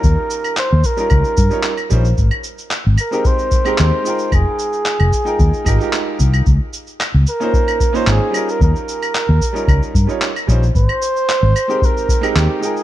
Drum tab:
SH |x-xxx-xxxxxxxxxx|x-xxx-xxxxxxx-xx|x-xxx-xxxxxxx-xx|x-xxx-xxxxxxx-xx|
CL |---x----x----x--|-x----x----x----|x----x----x----x|----x----x----x-|
CP |----x-------x---|----x-------x---|----x-------x---|----x-------x---|
BD |o-----o-o-o---o-|o-------o-o-----|o-----o-o-o---o-|o-------o-o-----|

SH |xxxxx-xxxxxxxxxx|x-xxx-xxxxxxx-xx|
CL |---x----x----x--|-x----x----x----|
CP |----x-------x---|----x-------x---|
BD |o-----o-o-o---o-|o-------o-o-----|